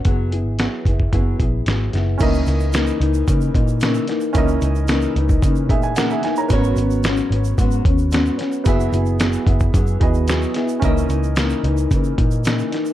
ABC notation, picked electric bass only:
X:1
M:4/4
L:1/16
Q:1/4=111
K:C#dor
V:1 name="Picked electric bass" clef=bass
F,,,3 G,,,2 z F,,,2 F,,,2 A,,,2 G,,,2 F,,,2 | C,,2 C,,4 C,,2 C,2 A,,4 z2 | C,,2 C,,4 C,,2 C,2 A,,4 z2 | G,,,2 G,,,4 G,,,2 G,,2 D,,4 z2 |
F,,,2 F,,,4 F,,,2 F,,2 D,,4 z2 | C,,2 C,,4 C,,2 C,2 A,,4 z2 |]